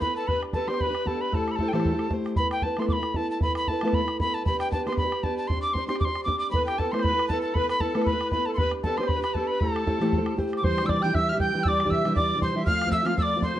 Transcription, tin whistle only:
0.01 B5
0.16 A5
0.28 B5
0.54 A5
0.68 C6
0.81 B5
1.07 A5
1.21 B5
1.34 A5
1.51 B5
1.56 A5
1.68 G5
1.73 A5
2.37 B5
2.52 G5
2.63 A5
2.79 C6
2.89 B5 D6
3.16 A5
3.31 A5
3.42 B5
3.57 B5
3.68 A5
3.94 B5
4.21 B5
4.34 A5
4.46 B5
4.60 G5
4.72 A5
4.87 C6
4.97 B5
5.23 A5
5.38 A5
5.48 C6
5.62 D6
5.73 C6
5.88 C6
6.00 D6
6.05 C6
6.24 D6
6.39 D6
6.51 B5
6.66 G5
6.78 A5
6.92 C6
7.02 B5
7.28 A5
7.42 A5
7.54 B5
7.69 B5
7.81 A5
8.06 B5
8.32 B5
8.46 A5
8.54 B5 C6
8.83 A5
8.97 C6
9.08 B5
9.23 B5
9.34 A5
9.47 B5
9.60 A5
10.57 D6
10.64 C6
10.86 D6 E6
11.02 G6
11.15 E6
11.29 F6
11.40 G6
11.63 E6
11.68 D6
11.90 E6
12.16 D6
12.42 C6
12.66 F6
12.92 E6
13.06 F6
13.18 E6
13.23 D6
13.43 C6

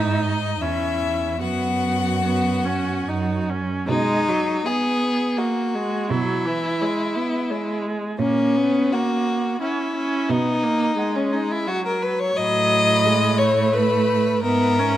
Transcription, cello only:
Already playing: G#2
0.61 E2
1.40 F#2
3.08 F#2
3.89 B2
6.10 B2
8.19 A#2
10.29 B2
12.36 A2
14.44 G#2

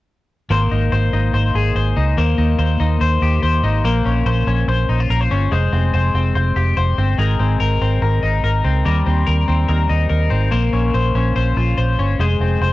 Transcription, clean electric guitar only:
0.51 A#3 C5
0.71 D#4
0.92 C5
1.13 D#4
1.34 C5
1.55 G#4
1.76 C5
1.97 D#4
2.18 A#3 C5
2.38 D#4
2.59 C5
2.80 D#4
3.01 C5
3.22 G4
3.43 C5
3.64 D#4
3.85 A#3 C5
4.05 C#4
4.26 C5
4.47 C#4
4.68 C5
4.89 D#4
5.00 F4
5.10 A#4
5.21 C5
5.31 C#4
5.52 G#3 C5
5.72 C4
5.94 C5
6.15 C4
6.35 C5
6.56 G4
6.77 C5
6.98 C4
7.19 G#3 A#4
7.40 C4
7.60 A#4
7.82 C4
8.02 A#4
8.23 D#4
8.44 A#4
8.64 C4
8.85 G3 A#4
9.06 C4
9.27 A#4
9.48 C4
9.69 A#4
9.90 D#4
10.10 A#4
10.30 C4
10.51 A#3 C5
10.73 C#4
10.94 C5
11.15 C#4
11.36 C5
11.57 F4
11.78 C5
11.99 C#4
12.20 G#3 C5
12.41 C4
12.62 C5

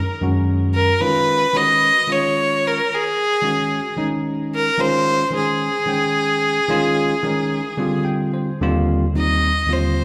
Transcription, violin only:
Already playing: A#4
0.74 A#4
1.00 B4
1.56 D#5
2.12 C#5
2.67 A#4
2.94 G#4
4.54 A#4
4.80 C5
5.37 G#4
9.18 D#5
9.72 C5

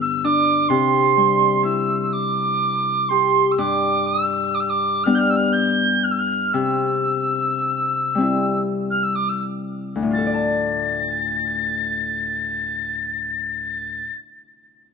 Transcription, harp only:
Already playing: G2 D3 B3
0.24 D4
0.70 C3
1.17 G3
1.63 E4
3.10 G4
3.58 G2
5.06 G3 B3 D4
6.54 C3
8.15 G3 C4
8.20 E4
9.95 D2
10.02 A2
10.11 F4
10.18 A4
10.26 D5
10.34 A5

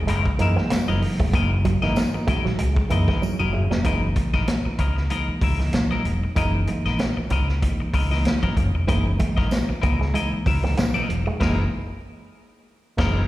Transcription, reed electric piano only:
0.39 E3 G#3 A#3 D#4
0.88 E3 G#3 A#3 D#4
1.82 E3 G#3 A#3 D#4
2.13 E3 G#3 A#3 D#4
2.28 F#4
2.45 A#3 D#4
2.59 G#4
2.90 E3 G#3 A#3 D#4 A#4
3.08 B4
3.22 G#3 E4 C#5
3.39 A#3 F#4
3.53 G#4 E5
3.70 C#4 A#4
3.84 E3 G#3 A#3 D#4
4.16 E3 G#3 A#3 D#4
5.10 E3 G#3 A#3 D#4
5.59 E3 G#3 A#3 D#4
6.36 E3 G#3 A#3 D#4
6.67 E3 G#3 A#3 D#4
7.62 E3 G#3 A#3 D#4
8.11 E3 G#3 A#3 D#4
8.88 E3 G#3 A#3 D#4
9.19 E3 G#3 A#3 D#4
10.14 E3 G#3 A#3 D#4
10.63 E3 G#3 A#3 D#4
11.40 E3 G#3 A#3 D#4
12.97 E3 G#3 A#3 D#4

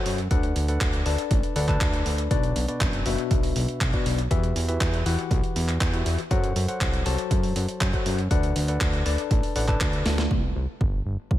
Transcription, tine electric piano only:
Already playing: F#3 F#4 A4 C5 F#5
0.31 D4 A4 B4 D5 F#5
0.68 D4 A4 B4 D5 F#5
1.06 D4 A4 B4 D5 A5
1.56 D4 A4 B4 D5 F#5
1.68 D4 A4 B4 D5 A5
2.31 B2 D4 F#4 B4 D5
2.68 B2 D4 F#4 B4 D5
3.06 B2 D4 F#4 B4 E5
3.93 B2 D4 F#4 B4 D5
4.31 E3 F#4 G4 B4 E5
4.68 E3 F#4 G4 B4 E5
5.06 E3 F#4 G4 B4 F#5
5.93 E3 F#4 G4 B4 E5
6.31 F#3 F#4 A4 C5 F#5
6.68 F#3 F#4 A4 C5 F#5
7.06 F#3 F#4 A4 C5 A5
7.93 F#3 F#4 A4 C5 F#5
8.31 D4 A4 B4 D5 F#5
8.68 D4 A4 B4 D5 F#5
9.06 D4 A4 B4 D5 A5
9.56 D4 A4 B4 D5 F#5
9.68 D4 A4 B4 D5 A5

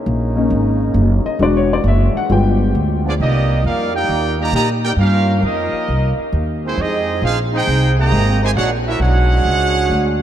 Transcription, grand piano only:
0.36 A#3 C#4 D#4
1.26 D#5
1.40 G#3 D4 F#4 D5
1.57 C#5
1.73 D5
1.88 E5
2.17 F#5
2.30 G#3 B3 F4 G5

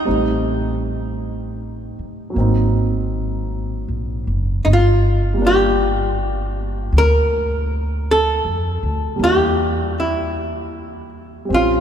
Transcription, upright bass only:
0.08 A1
1.99 muted upright bass stroke
2.36 G#1
3.88 A#1
4.27 F#1
4.65 G1
6.92 D2
8.45 F2
8.83 D2
9.19 E2
11.50 A1

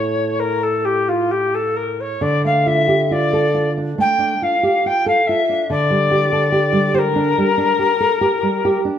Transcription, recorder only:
Already playing: C#5
0.40 A#4
0.63 A4
0.85 G4
1.09 F4
1.31 G4
1.55 A4
1.77 A#4
2.00 C#5
2.22 D5
2.46 F5
2.67 E5
3.12 D5
4.01 G5
4.43 F5
4.87 G5
5.08 F5
5.27 E5
5.71 D5
6.95 A#4 C5

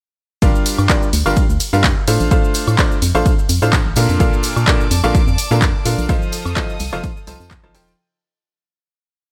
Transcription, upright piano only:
0.42 G3 D4 F4 G4 A#4 F5
0.89 G3 D4 F4 G4 A#4 D5
1.26 G3 D4 F4 G4 A#4 F5
1.73 G3 D4 F4 G4 A#4 F5
2.08 A3 D4 F4 A4 C5 F5
2.31 A3 D4 F4 A4 C5 F5
2.78 A3 D4 F4 A4 C5 D5
3.15 A3 D4 F4 A4 C5 F5
3.62 A3 D4 F4 A4 C5 F5
3.97 A#2 D4 F4 A4 A#4 F5
4.20 A#2 D4 F4 A4 A#4 F5
4.67 A#2 D4 F4 A4 A#4 D5
5.04 A#2 D4 F4 A4 A#4 F5
5.51 A#2 D4 F4 A4 A#4 F5
5.86 D4 F4 A4 A#4 F5
6.09 F3 D#4 F4 A4 C5 F5
6.56 F3 D#4 F4 A4 C5 D#5
6.93 F3 D#4 F4 A4 C5 F5
7.27 F3 D#4 F4 A4 C5 A5
7.64 F3 D#4 F4 A4 C5 A5
7.75 F3 D#4 F4 A4 C5 G5

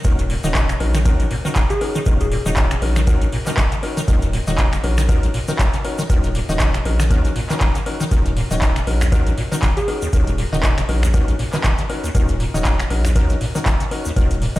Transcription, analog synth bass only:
0.05 D#1
0.44 D#1
0.80 A#1
1.20 A#1
1.56 D#1
2.06 D#1
2.46 D#1
2.82 A#1
3.21 A#1
3.58 D#1
4.08 D#1
4.47 D#1
4.84 A#1
5.23 A#1
5.59 D#1
6.10 D#1
6.49 D#1
6.85 A#1
7.25 A#1
7.61 D#1
8.11 D#1
8.51 D#1
8.87 A#1
9.26 A#1
9.63 D#1
10.13 D#1
10.53 D#1
10.89 A#1
11.28 A#1
11.64 D#1
12.15 D#1
12.54 D#1
12.90 A#1
13.30 A#1
13.66 D#1
14.16 D#1
14.56 D#1

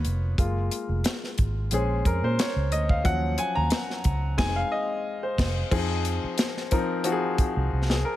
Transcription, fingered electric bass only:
0.05 F1
0.38 F#1
0.89 F1
1.39 G#1
1.72 A#1
2.06 F2
2.23 A#2
2.56 C#2
2.72 D2
3.05 D#2
3.57 D#2
4.05 C#2
4.39 F1
5.38 F1
5.72 F2
6.24 muted fingered electric bass stroke
7.38 muted fingered electric bass stroke
7.57 C2
7.73 C2

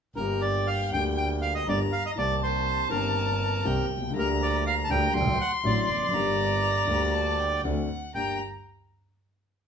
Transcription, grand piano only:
0.15 G1 G2 D3 G3 A#3
0.20 G4
0.92 D2 D3 G3 A#3
0.96 G4
1.67 G1 G2 D3 G3 A#3 G4
2.16 C2 C3 D#3 A#3 C4
2.20 G4
2.90 G1 G2 D#3 A#3 C4
2.94 G4
3.64 C2 C3 D#3 A#3 C4 G4
3.97 B1
4.02 C2
4.09 C#2
4.13 D2 D3 G3 A#3 G4
4.89 D2 D3 G3 A#3 G4
5.12 D2 D3 F#3 A3 F#4
5.63 A1 A2 D3 F#3 A3 F#4
5.94 E2
6.01 F2
6.07 F#2 D3
6.12 G1 G2 G3 A#3 G4
6.87 D2 D3 G3 A#3
6.91 G4
7.64 D2 D3 A3 C4 F#4
8.15 G2 A#3 D4 G4

